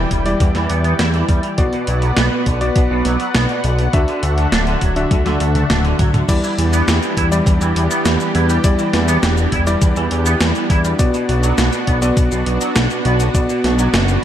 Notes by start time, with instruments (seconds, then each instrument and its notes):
Already playing: analog synth pad E3 E4 D5 G5, electric grand piano G3 E4 D5
0.11 analog synth bass E1, clean electric guitar G3, kick, closed hi-hat
0.26 clean electric guitar E3, electric grand piano G3 E4 D5, closed hi-hat
0.40 analog synth bass E2, clean electric guitar E3, kick, closed hi-hat
0.55 analog synth bass E2, clean electric guitar E3, snare, closed hi-hat
0.70 analog synth bass E2, clean electric guitar B3, closed hi-hat
0.84 clean electric guitar B3, closed hi-hat
0.99 analog synth bass E2, clean electric guitar E4, snare, closed hi-hat
1.14 clean electric guitar E3, closed hi-hat
1.28 analog synth bass E2, clean electric guitar G3, kick, closed hi-hat
1.43 clean electric guitar E3, closed hi-hat
1.58 analog synth bass B1, clean electric guitar B2, analog synth pad B3 B4 F#5, electric grand piano B3 F#4 D5, kick, closed hi-hat
1.73 clean electric guitar B2, closed hi-hat
1.87 analog synth bass B1, clean electric guitar F#3, closed hi-hat
2.02 clean electric guitar F#3, closed hi-hat
2.17 analog synth bass B1, clean electric guitar B3, snare, closed hi-hat
2.32 clean electric guitar B2
2.46 analog synth bass B1, clean electric guitar D3, kick, closed hi-hat
2.61 clean electric guitar B2, electric grand piano B3 F#4 D5, closed hi-hat
2.76 analog synth bass B1, clean electric guitar B2, kick, closed hi-hat
2.90 analog synth bass B1, clean electric guitar B2
3.05 analog synth bass B1, clean electric guitar F#3, snare, closed hi-hat
3.20 clean electric guitar F#3, closed hi-hat
3.35 analog synth bass B1, clean electric guitar B3, snare, closed hi-hat
3.49 clean electric guitar B2, closed hi-hat
3.64 analog synth bass B1, clean electric guitar D3, closed hi-hat
3.79 clean electric guitar B2, closed hi-hat
3.93 analog synth bass D2, analog synth pad D3 D4 E5, clean electric guitar D3, electric grand piano D4 F#4 E5, kick, closed hi-hat
4.08 clean electric guitar D3, closed hi-hat
4.23 analog synth bass D2, clean electric guitar A3, closed hi-hat
4.37 clean electric guitar A3, closed hi-hat
4.52 analog synth bass D1, clean electric guitar D4, snare, closed hi-hat
4.67 clean electric guitar D3, closed hi-hat
4.81 analog synth bass D1, clean electric guitar F#3, kick, closed hi-hat
4.96 clean electric guitar D3, electric grand piano D4 F#4 E5, closed hi-hat
5.11 analog synth bass D2, clean electric guitar D3, kick, closed hi-hat, high tom
5.26 analog synth bass D2, clean electric guitar D3, snare, closed hi-hat, high tom
5.40 analog synth bass D2, clean electric guitar A3, closed hi-hat
5.55 clean electric guitar A3, closed hi-hat, mid tom
5.70 analog synth bass D1, clean electric guitar D4, snare, closed hi-hat, mid tom
5.84 clean electric guitar D3, closed hi-hat
5.99 analog synth bass D2, clean electric guitar F#3, kick, closed hi-hat, mid tom
6.14 clean electric guitar D3, closed hi-hat, mid tom
6.28 analog synth bass E2, analog synth pad E3 B3 D4 G4, clean electric guitar E3, electric grand piano G3 E4 D5, kick, closed hi-hat, crash, shaker
6.43 clean electric guitar E3, closed hi-hat, shaker
6.58 analog synth bass E2, clean electric guitar E3, closed hi-hat
6.73 clean electric guitar B3, closed hi-hat, shaker
6.87 analog synth bass E2, clean electric guitar E3, snare, closed hi-hat, shaker
7.02 clean electric guitar E3, closed hi-hat, shaker
7.17 analog synth bass E2, clean electric guitar E4, kick, closed hi-hat
7.32 electric grand piano G3 E4 D5, clean electric guitar G3, closed hi-hat, shaker
7.46 analog synth bass E2, clean electric guitar E3, kick, closed hi-hat, shaker
7.61 analog synth bass E2, clean electric guitar E3, closed hi-hat, shaker
7.76 analog synth bass E2, clean electric guitar E3, closed hi-hat
7.90 clean electric guitar B3, closed hi-hat, shaker
8.05 analog synth bass E2, clean electric guitar E3, snare, closed hi-hat, shaker
8.20 clean electric guitar E3, closed hi-hat, shaker
8.35 analog synth bass E2, clean electric guitar E4, closed hi-hat
8.49 clean electric guitar G3, closed hi-hat, shaker
8.64 analog synth bass E2, clean electric guitar E3, electric grand piano G3 E4 D5, kick, closed hi-hat, shaker
8.79 clean electric guitar E3, closed hi-hat, shaker
8.93 analog synth bass E2, clean electric guitar E3, snare, closed hi-hat
9.08 clean electric guitar B3, closed hi-hat, shaker
9.23 analog synth bass E1, clean electric guitar E3, snare, closed hi-hat, shaker
9.37 clean electric guitar E3, closed hi-hat, shaker
9.52 analog synth bass E1, clean electric guitar E4, kick, closed hi-hat
9.67 clean electric guitar G3, electric grand piano G3 E4 D5, closed hi-hat, shaker
9.82 analog synth bass E2, clean electric guitar E3, kick, closed hi-hat, shaker
9.96 analog synth bass E2, clean electric guitar E3, closed hi-hat, shaker
10.11 analog synth bass E2, clean electric guitar E3, closed hi-hat
10.26 clean electric guitar B3, closed hi-hat, shaker
10.40 analog synth bass E2, clean electric guitar E3, snare, closed hi-hat, shaker
10.55 clean electric guitar E3, closed hi-hat, shaker
10.70 analog synth bass E2, clean electric guitar E4, kick, closed hi-hat
10.84 clean electric guitar G3, closed hi-hat, shaker
10.99 analog synth bass B1, clean electric guitar B2, electric grand piano B3 F#4 D5, analog synth pad F#4, kick, closed hi-hat, shaker
11.14 clean electric guitar B2, closed hi-hat, shaker
11.29 analog synth bass B1, clean electric guitar B2, closed hi-hat
11.43 clean electric guitar F#3, closed hi-hat, shaker
11.58 analog synth bass B1, clean electric guitar B2, snare, closed hi-hat, shaker
11.73 clean electric guitar B2, closed hi-hat, shaker
11.87 analog synth bass B1, clean electric guitar B3, kick, closed hi-hat
12.02 clean electric guitar D3, electric grand piano B3 F#4 D5, closed hi-hat, shaker
12.17 analog synth bass B1, clean electric guitar B2, kick, closed hi-hat, shaker
12.32 analog synth bass B1, clean electric guitar B2, closed hi-hat, shaker
12.46 analog synth bass B1, clean electric guitar B2, closed hi-hat
12.61 clean electric guitar F#3, closed hi-hat, shaker
12.76 analog synth bass B1, clean electric guitar B2, snare, closed hi-hat, shaker
12.90 clean electric guitar B2, closed hi-hat, shaker
13.05 analog synth bass B1, clean electric guitar B3, closed hi-hat
13.20 clean electric guitar D3, closed hi-hat, shaker
13.35 analog synth bass B1, clean electric guitar B2, electric grand piano B3 F#4 D5, kick, closed hi-hat, shaker
13.49 clean electric guitar B2, closed hi-hat, shaker
13.64 analog synth bass B1, clean electric guitar B2, snare, closed hi-hat
13.79 clean electric guitar F#3, closed hi-hat, shaker
13.94 analog synth bass F#1, clean electric guitar B2, snare, closed hi-hat, shaker
14.08 clean electric guitar B2, closed hi-hat, shaker